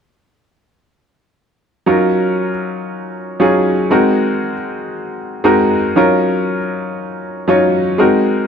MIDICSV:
0, 0, Header, 1, 2, 480
1, 0, Start_track
1, 0, Tempo, 510551
1, 1763, Time_signature, 4, 2, 24, 8
1, 7963, End_track
2, 0, Start_track
2, 0, Title_t, "Grand piano"
2, 0, Program_c, 0, 0
2, 1752, Note_on_c, 0, 54, 78
2, 1757, Note_on_c, 0, 61, 66
2, 1759, Note_on_c, 0, 63, 66
2, 1764, Note_on_c, 0, 65, 69
2, 1768, Note_on_c, 0, 70, 75
2, 1943, Control_c, 0, 64, 127
2, 2340, Note_off_c, 0, 54, 0
2, 2343, Note_off_c, 0, 61, 0
2, 2344, Note_off_c, 0, 63, 0
2, 2346, Note_off_c, 0, 65, 0
2, 2349, Note_off_c, 0, 70, 0
2, 3193, Note_on_c, 0, 54, 70
2, 3195, Note_on_c, 0, 61, 69
2, 3199, Note_on_c, 0, 63, 60
2, 3202, Note_on_c, 0, 65, 67
2, 3208, Note_on_c, 0, 68, 82
2, 3489, Note_off_c, 0, 54, 0
2, 3490, Note_off_c, 0, 61, 0
2, 3492, Note_off_c, 0, 63, 0
2, 3494, Note_off_c, 0, 65, 0
2, 3497, Note_off_c, 0, 68, 0
2, 3672, Note_on_c, 0, 56, 79
2, 3673, Note_on_c, 0, 60, 71
2, 3679, Note_on_c, 0, 63, 60
2, 3680, Note_on_c, 0, 66, 75
2, 3685, Note_on_c, 0, 70, 80
2, 3694, Control_c, 0, 64, 0
2, 3838, Control_c, 0, 64, 127
2, 4260, Note_off_c, 0, 56, 0
2, 4261, Note_off_c, 0, 60, 0
2, 4264, Note_off_c, 0, 63, 0
2, 4264, Note_off_c, 0, 66, 0
2, 4267, Note_off_c, 0, 70, 0
2, 5114, Note_on_c, 0, 56, 81
2, 5116, Note_on_c, 0, 60, 67
2, 5118, Note_on_c, 0, 63, 74
2, 5125, Note_on_c, 0, 66, 73
2, 5128, Note_on_c, 0, 70, 81
2, 5410, Note_off_c, 0, 56, 0
2, 5411, Note_off_c, 0, 60, 0
2, 5412, Note_off_c, 0, 63, 0
2, 5415, Note_off_c, 0, 66, 0
2, 5416, Note_off_c, 0, 70, 0
2, 5600, Note_on_c, 0, 54, 76
2, 5604, Note_on_c, 0, 61, 72
2, 5606, Note_on_c, 0, 63, 64
2, 5612, Note_on_c, 0, 65, 76
2, 5613, Control_c, 0, 64, 0
2, 5616, Note_on_c, 0, 70, 86
2, 5771, Control_c, 0, 64, 127
2, 6184, Note_off_c, 0, 54, 0
2, 6186, Note_off_c, 0, 61, 0
2, 6187, Note_off_c, 0, 63, 0
2, 6190, Note_off_c, 0, 65, 0
2, 6192, Note_off_c, 0, 70, 0
2, 7029, Note_on_c, 0, 54, 78
2, 7033, Note_on_c, 0, 61, 67
2, 7038, Note_on_c, 0, 63, 75
2, 7040, Note_on_c, 0, 65, 77
2, 7046, Note_on_c, 0, 73, 81
2, 7327, Note_off_c, 0, 54, 0
2, 7329, Note_off_c, 0, 61, 0
2, 7331, Note_off_c, 0, 63, 0
2, 7332, Note_off_c, 0, 65, 0
2, 7335, Note_off_c, 0, 73, 0
2, 7505, Note_on_c, 0, 56, 75
2, 7510, Note_on_c, 0, 60, 69
2, 7514, Note_on_c, 0, 63, 66
2, 7517, Note_on_c, 0, 66, 68
2, 7518, Note_on_c, 0, 70, 80
2, 7532, Control_c, 0, 64, 0
2, 7673, Control_c, 0, 64, 127
2, 7963, Note_off_c, 0, 56, 0
2, 7963, Note_off_c, 0, 60, 0
2, 7963, Note_off_c, 0, 63, 0
2, 7963, Note_off_c, 0, 66, 0
2, 7963, Note_off_c, 0, 70, 0
2, 7963, End_track
0, 0, End_of_file